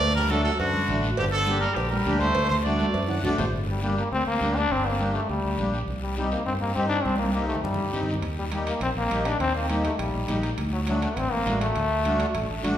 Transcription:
Already playing: trombone A3, trumpet D5
0.00 fingered electric bass D2, cowbell, high conga, long guiro
0.15 trombone G3, trumpet A#4, low conga
0.30 trombone F#3, accordion A3 D4 F#4, trumpet A4, high conga, short guiro
0.44 trombone F#3, trumpet A4, short guiro
0.59 fingered electric bass F#2, trombone D3, trumpet F#4, cowbell, high conga, long guiro
0.74 high conga
0.88 fingered electric bass A1, accordion A3 D4 F#4, high conga, low conga, short guiro
1.03 short guiro
1.17 fingered electric bass G1, trombone D3, trumpet G4, cowbell, high conga, long guiro
1.32 trombone D3, trumpet A4
1.47 accordion A#3 D4 G4, high conga, short guiro
1.61 trombone G3, trumpet A#4, short guiro
1.75 fingered electric bass A#1, trombone D3, trumpet G4, cowbell, high conga, long guiro
1.90 trombone G3, trumpet A#4, high conga
2.06 fingered electric bass D2, accordion A#3 D4 G4, high conga, short guiro
2.19 trombone A3, trumpet C5, high conga, short guiro
2.35 fingered electric bass D2, cowbell, high conga, long guiro
2.49 trombone A3, trumpet C5, low conga
2.64 accordion A3 D4 F#4, trombone A3, trumpet D5, high conga, short guiro
2.79 high conga, short guiro
2.94 fingered electric bass F#2, cowbell, long guiro
3.08 accordion F#5, low conga, high timbale
3.23 fingered electric bass C2, accordion A3 D4 F#4 D5, low conga, short guiro
3.38 fingered electric bass A1, accordion C5, low conga, low timbale, short guiro
3.53 fingered electric bass G1, high conga, long guiro
3.70 trombone G3
3.82 trombone G3, accordion A#3 D4 G4, high conga, short guiro
3.97 trombone A#3, short guiro
4.12 fingered electric bass D2, trombone C4, high conga, long guiro
4.26 fingered electric bass D2, trombone A#3
4.41 fingered electric bass D2, accordion A#3 D4 G4, high conga, short guiro
4.56 trombone D4, short guiro
4.70 fingered electric bass G1, trombone C4, high conga, long guiro
4.86 trombone A#3
5.00 accordion A#3 D4 G4, high conga, short guiro
5.14 trombone A3, short guiro
5.29 fingered electric bass D2, trombone G3, high conga, long guiro
5.44 fingered electric bass D2
5.58 fingered electric bass A#1, accordion A#3 D4 G4, high conga, short guiro
5.74 short guiro
5.87 fingered electric bass C2, high conga, long guiro
6.02 trombone G3
6.17 trombone G3, accordion C4 D#4 G4, high conga, short guiro
6.31 trombone A#3, short guiro
6.46 fingered electric bass G2, trombone C4, high conga, long guiro
6.61 fingered electric bass G2, trombone A#3
6.75 fingered electric bass G2, trombone C4, accordion C4 D#4 G4, high conga, short guiro
6.89 trombone D4, short guiro
7.04 fingered electric bass C2, trombone C4, high conga, long guiro
7.16 trombone A#3, high conga
7.26 high conga
7.33 trombone A#3, accordion C4 D#4 G4, short guiro
7.48 trombone A3, short guiro
7.55 low conga
7.63 fingered electric bass G2, trombone G3, low conga, long guiro
7.74 low conga
7.79 fingered electric bass G2
7.93 fingered electric bass G2, accordion C4 D#4 G4, low conga, short guiro
8.03 low conga
8.08 short guiro
8.14 low conga
8.22 fingered electric bass D#2, high conga, high timbale, long guiro
8.39 trombone G3
8.51 trombone G3, accordion A#3 D#4 G4, high conga, high timbale, short guiro
8.67 trombone A#3, high timbale, short guiro
8.80 fingered electric bass A#1, trombone C4, high conga, high timbale, long guiro
8.95 fingered electric bass A#1, trombone A#3
9.10 fingered electric bass A#1, accordion A#3 D#4 G4, high conga, high timbale, short guiro
9.25 trombone D4, high timbale, short guiro
9.40 fingered electric bass D#2, trombone C4, high conga, high timbale, long guiro
9.56 trombone A#3
9.69 accordion A#3 D#4 G4, trombone A#3, high conga, high timbale, short guiro
9.85 trombone A3, high timbale, short guiro
9.99 fingered electric bass A#1, trombone G3, high conga, high timbale, long guiro
10.14 fingered electric bass A#1
10.28 fingered electric bass A#1, accordion A#3 D#4 G4, high conga, high timbale, low timbale, short guiro
10.43 high timbale, short guiro
10.58 fingered electric bass D2, high conga, high timbale, long guiro
10.73 trombone F#3
10.87 trombone F#3, accordion A3 D4 F#4, high conga, high timbale, short guiro
11.02 trombone A3, high timbale, short guiro
11.16 fingered electric bass A1, trombone C4, high conga, high timbale, long guiro
11.32 fingered electric bass A1, trombone A#3
11.46 fingered electric bass A1, accordion A3 D4 F#4, high conga, high timbale, low timbale, short guiro
11.61 trombone A3, high timbale, short guiro
11.76 fingered electric bass D2, high conga, high timbale, long guiro
12.05 accordion A3 D4 F#4, high conga, high timbale, short guiro
12.20 high timbale, short guiro
12.34 fingered electric bass A1, high conga, high timbale, long guiro
12.49 fingered electric bass A1
12.63 fingered electric bass A1, accordion A3 D4 F#4, high conga, high timbale, short guiro

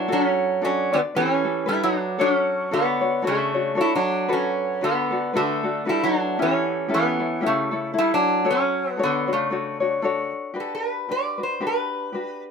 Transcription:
Already playing: resonator guitar played with a steel bar D4
0.08 resonator guitar played with a steel bar F#3, ukulele F#4 A4
0.13 resonator guitar played with a steel bar D4
0.24 resonator guitar played with a steel bar C#4
0.62 resonator guitar played with a steel bar F#3 C#4, ukulele D4 F#4 A4 D5
0.93 resonator guitar played with a steel bar D3 B3, ukulele D4 F#4 D5
1.15 resonator guitar played with a steel bar E3 C#4, ukulele C#4 G4 A4 B4
1.44 ukulele C#4 G4 A4
1.66 resonator guitar played with a steel bar G3 E4, ukulele A4 B4
1.83 resonator guitar played with a steel bar F#3 D4
2.18 resonator guitar played with a steel bar F#3 D4, ukulele F#4 A4 C#5
2.32 resonator guitar played with a steel bar C#4
2.71 resonator guitar played with a steel bar D3 B3, ukulele D4 F#4 A4 C#5
3.01 ukulele D4 F#4 C#5
3.22 ukulele D4 F#4 A4 C#5
3.27 resonator guitar played with a steel bar C#3 A3
3.54 ukulele D4 F#4 C#5
3.75 ukulele D4 F#4 A4 C#5
3.81 resonator guitar played with a steel bar A3 E4
3.95 resonator guitar played with a steel bar F#3 D4
4.29 ukulele F#4 A4 B4
4.33 resonator guitar played with a steel bar F#3 C#4
4.81 resonator guitar played with a steel bar D3 B3, ukulele D4 F#4 A4 B4
5.11 ukulele D4 F#4 A4
5.34 resonator guitar played with a steel bar D3 A3, ukulele D4 F#4 A4 B4
5.63 ukulele D4 F#4 A4
5.85 ukulele D4 F#4 A4 B4, resonator guitar played with a steel bar E4
5.90 resonator guitar played with a steel bar G3
6.03 resonator guitar played with a steel bar F#3 D4
6.39 resonator guitar played with a steel bar E3 C#4, ukulele C#4 E4 G4 A4
6.88 ukulele C#4 E4 G4 A4
6.94 resonator guitar played with a steel bar E3 B3
7.19 ukulele C#4 E4 A4
7.41 ukulele C#4 E4 G4 A4
7.46 resonator guitar played with a steel bar C#3 A3
7.71 ukulele C#4 E4 A4
7.94 ukulele E4 A4
7.98 resonator guitar played with a steel bar G3 E4
8.14 resonator guitar played with a steel bar F#3 D4
8.45 ukulele F#4 A4 C#5
8.51 resonator guitar played with a steel bar F#3 C#4
8.93 resonator guitar played with a steel bar B3
8.97 ukulele D4 F#4 A4 C#5
9.03 resonator guitar played with a steel bar D3 B3
9.28 ukulele D4 F#4 C#5
9.33 resonator guitar played with a steel bar C#3 A3
9.50 ukulele D4 F#4 A4 C#5
9.80 ukulele D4 F#4 C#5
10.02 ukulele D4 F#4 A4 C#5
10.54 ukulele D4 F#4 G4 B4
10.60 resonator guitar played with a steel bar A4
10.75 resonator guitar played with a steel bar B4
11.09 ukulele D4 F#4 G4 B4, resonator guitar played with a steel bar D5
11.38 ukulele D4 F#4 B4
11.43 resonator guitar played with a steel bar C5
11.60 ukulele D4 F#4 G4 B4
11.67 resonator guitar played with a steel bar B4
12.13 ukulele D4 F#4 G4 B4

